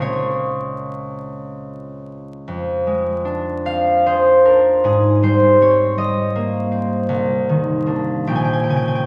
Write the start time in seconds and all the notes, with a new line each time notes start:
Already playing: C#2 C5 F5
0.00 G#3 C4 F4 C#5
2.48 F2
2.87 G#3
3.25 D4
3.65 C4 F5
4.06 G#4 C5
4.45 D4 A#4
4.84 G#2 G#4
5.23 G3 C5
5.61 C4 C#5
5.98 G3 D#5
6.35 A#3
6.72 C4
7.09 C2
7.49 D#3
7.86 A#3 D4
8.27 A#1 G5
8.36 G#5
8.44 G5
8.53 G#5
8.64 G5
8.69 C#3 G#5
8.77 G5
8.88 G#5
8.95 G5